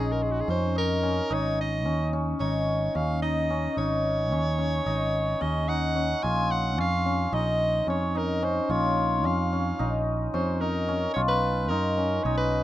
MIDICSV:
0, 0, Header, 1, 4, 480
1, 0, Start_track
1, 0, Key_signature, -5, "minor"
1, 0, Tempo, 547445
1, 1146, Time_signature, 9, 3, 24, 8
1, 11077, End_track
2, 0, Start_track
2, 0, Title_t, "Soprano saxophone"
2, 0, Program_c, 0, 64
2, 0, Note_on_c, 0, 68, 72
2, 107, Note_on_c, 0, 70, 58
2, 120, Note_off_c, 0, 68, 0
2, 200, Note_on_c, 0, 68, 54
2, 213, Note_off_c, 0, 70, 0
2, 272, Note_on_c, 0, 66, 58
2, 285, Note_off_c, 0, 68, 0
2, 353, Note_on_c, 0, 68, 56
2, 367, Note_off_c, 0, 66, 0
2, 430, Note_off_c, 0, 68, 0
2, 438, Note_on_c, 0, 72, 72
2, 656, Note_off_c, 0, 72, 0
2, 682, Note_on_c, 0, 70, 74
2, 1167, Note_on_c, 0, 73, 78
2, 1180, Note_off_c, 0, 70, 0
2, 1396, Note_off_c, 0, 73, 0
2, 1409, Note_on_c, 0, 75, 76
2, 1844, Note_off_c, 0, 75, 0
2, 2106, Note_on_c, 0, 73, 70
2, 2592, Note_on_c, 0, 77, 63
2, 2606, Note_off_c, 0, 73, 0
2, 2822, Note_off_c, 0, 77, 0
2, 2827, Note_on_c, 0, 75, 72
2, 3272, Note_off_c, 0, 75, 0
2, 3313, Note_on_c, 0, 73, 82
2, 4745, Note_on_c, 0, 75, 71
2, 4758, Note_off_c, 0, 73, 0
2, 4985, Note_on_c, 0, 78, 70
2, 4999, Note_off_c, 0, 75, 0
2, 5466, Note_on_c, 0, 80, 74
2, 5479, Note_off_c, 0, 78, 0
2, 5710, Note_on_c, 0, 78, 70
2, 5723, Note_off_c, 0, 80, 0
2, 5947, Note_off_c, 0, 78, 0
2, 5966, Note_on_c, 0, 77, 80
2, 6437, Note_on_c, 0, 75, 74
2, 6450, Note_off_c, 0, 77, 0
2, 6911, Note_off_c, 0, 75, 0
2, 6925, Note_on_c, 0, 73, 66
2, 7166, Note_on_c, 0, 70, 67
2, 7179, Note_off_c, 0, 73, 0
2, 7398, Note_on_c, 0, 72, 63
2, 7412, Note_off_c, 0, 70, 0
2, 7636, Note_on_c, 0, 73, 73
2, 7650, Note_off_c, 0, 72, 0
2, 8118, Note_on_c, 0, 77, 65
2, 8131, Note_off_c, 0, 73, 0
2, 8834, Note_off_c, 0, 77, 0
2, 9067, Note_on_c, 0, 72, 64
2, 9299, Note_on_c, 0, 70, 71
2, 9312, Note_off_c, 0, 72, 0
2, 9762, Note_off_c, 0, 70, 0
2, 9767, Note_on_c, 0, 73, 75
2, 9826, Note_off_c, 0, 73, 0
2, 9891, Note_on_c, 0, 71, 75
2, 10248, Note_on_c, 0, 70, 66
2, 10262, Note_off_c, 0, 71, 0
2, 10727, Note_on_c, 0, 73, 71
2, 10741, Note_off_c, 0, 70, 0
2, 10845, Note_off_c, 0, 73, 0
2, 10851, Note_on_c, 0, 71, 72
2, 11077, Note_off_c, 0, 71, 0
2, 11077, End_track
3, 0, Start_track
3, 0, Title_t, "Hammered dulcimer"
3, 0, Program_c, 1, 15
3, 0, Note_on_c, 1, 61, 55
3, 0, Note_on_c, 1, 63, 63
3, 0, Note_on_c, 1, 65, 65
3, 426, Note_off_c, 1, 61, 0
3, 429, Note_on_c, 1, 61, 64
3, 663, Note_off_c, 1, 63, 0
3, 666, Note_on_c, 1, 63, 56
3, 899, Note_off_c, 1, 61, 0
3, 903, Note_on_c, 1, 61, 61
3, 1139, Note_off_c, 1, 63, 0
3, 1143, Note_on_c, 1, 63, 72
3, 1622, Note_off_c, 1, 61, 0
3, 1625, Note_on_c, 1, 61, 61
3, 1864, Note_off_c, 1, 61, 0
3, 1867, Note_on_c, 1, 61, 58
3, 1943, Note_off_c, 1, 65, 0
3, 2102, Note_off_c, 1, 63, 0
3, 2105, Note_on_c, 1, 63, 67
3, 2582, Note_off_c, 1, 61, 0
3, 2586, Note_on_c, 1, 61, 63
3, 2822, Note_off_c, 1, 63, 0
3, 2825, Note_on_c, 1, 63, 60
3, 3067, Note_off_c, 1, 61, 0
3, 3071, Note_on_c, 1, 61, 62
3, 3304, Note_off_c, 1, 63, 0
3, 3307, Note_on_c, 1, 63, 67
3, 3784, Note_off_c, 1, 61, 0
3, 3788, Note_on_c, 1, 61, 62
3, 4016, Note_off_c, 1, 61, 0
3, 4020, Note_on_c, 1, 61, 53
3, 4260, Note_off_c, 1, 63, 0
3, 4264, Note_on_c, 1, 63, 68
3, 4737, Note_off_c, 1, 61, 0
3, 4741, Note_on_c, 1, 61, 67
3, 4978, Note_off_c, 1, 63, 0
3, 4981, Note_on_c, 1, 63, 58
3, 5218, Note_off_c, 1, 61, 0
3, 5221, Note_on_c, 1, 61, 59
3, 5458, Note_on_c, 1, 65, 61
3, 5938, Note_off_c, 1, 61, 0
3, 5941, Note_on_c, 1, 61, 61
3, 6185, Note_off_c, 1, 61, 0
3, 6189, Note_on_c, 1, 61, 57
3, 6423, Note_off_c, 1, 63, 0
3, 6426, Note_on_c, 1, 63, 67
3, 6905, Note_off_c, 1, 61, 0
3, 6908, Note_on_c, 1, 61, 61
3, 7142, Note_off_c, 1, 63, 0
3, 7146, Note_on_c, 1, 63, 62
3, 7383, Note_off_c, 1, 61, 0
3, 7387, Note_on_c, 1, 61, 61
3, 7624, Note_off_c, 1, 65, 0
3, 7627, Note_on_c, 1, 65, 69
3, 8096, Note_off_c, 1, 61, 0
3, 8100, Note_on_c, 1, 61, 60
3, 8349, Note_off_c, 1, 61, 0
3, 8353, Note_on_c, 1, 61, 54
3, 8581, Note_off_c, 1, 63, 0
3, 8584, Note_on_c, 1, 63, 71
3, 9060, Note_off_c, 1, 61, 0
3, 9064, Note_on_c, 1, 61, 69
3, 9302, Note_off_c, 1, 63, 0
3, 9305, Note_on_c, 1, 63, 63
3, 9540, Note_off_c, 1, 61, 0
3, 9543, Note_on_c, 1, 61, 64
3, 9780, Note_off_c, 1, 65, 0
3, 9784, Note_on_c, 1, 65, 73
3, 10257, Note_off_c, 1, 63, 0
3, 10261, Note_on_c, 1, 63, 66
3, 10496, Note_off_c, 1, 61, 0
3, 10499, Note_on_c, 1, 61, 54
3, 10742, Note_off_c, 1, 63, 0
3, 10745, Note_on_c, 1, 63, 70
3, 11077, Note_off_c, 1, 61, 0
3, 11077, Note_off_c, 1, 63, 0
3, 11077, Note_off_c, 1, 65, 0
3, 11077, End_track
4, 0, Start_track
4, 0, Title_t, "Picked electric bass"
4, 0, Program_c, 2, 34
4, 0, Note_on_c, 2, 34, 81
4, 361, Note_off_c, 2, 34, 0
4, 422, Note_on_c, 2, 41, 64
4, 1051, Note_off_c, 2, 41, 0
4, 1146, Note_on_c, 2, 32, 71
4, 1628, Note_off_c, 2, 32, 0
4, 1628, Note_on_c, 2, 39, 68
4, 2045, Note_off_c, 2, 39, 0
4, 2109, Note_on_c, 2, 32, 78
4, 2525, Note_off_c, 2, 32, 0
4, 2592, Note_on_c, 2, 39, 64
4, 3216, Note_off_c, 2, 39, 0
4, 3306, Note_on_c, 2, 32, 72
4, 3789, Note_off_c, 2, 32, 0
4, 3789, Note_on_c, 2, 39, 70
4, 4205, Note_off_c, 2, 39, 0
4, 4264, Note_on_c, 2, 32, 74
4, 4683, Note_off_c, 2, 32, 0
4, 4751, Note_on_c, 2, 39, 58
4, 5376, Note_off_c, 2, 39, 0
4, 5475, Note_on_c, 2, 34, 73
4, 5947, Note_off_c, 2, 34, 0
4, 5947, Note_on_c, 2, 41, 69
4, 6365, Note_off_c, 2, 41, 0
4, 6423, Note_on_c, 2, 34, 82
4, 6843, Note_off_c, 2, 34, 0
4, 6901, Note_on_c, 2, 41, 57
4, 7531, Note_off_c, 2, 41, 0
4, 7624, Note_on_c, 2, 34, 73
4, 8102, Note_off_c, 2, 34, 0
4, 8102, Note_on_c, 2, 41, 75
4, 8522, Note_off_c, 2, 41, 0
4, 8593, Note_on_c, 2, 34, 84
4, 9008, Note_off_c, 2, 34, 0
4, 9068, Note_on_c, 2, 41, 69
4, 9695, Note_off_c, 2, 41, 0
4, 9790, Note_on_c, 2, 35, 73
4, 10264, Note_off_c, 2, 35, 0
4, 10264, Note_on_c, 2, 42, 71
4, 10683, Note_off_c, 2, 42, 0
4, 10739, Note_on_c, 2, 35, 79
4, 11077, Note_off_c, 2, 35, 0
4, 11077, End_track
0, 0, End_of_file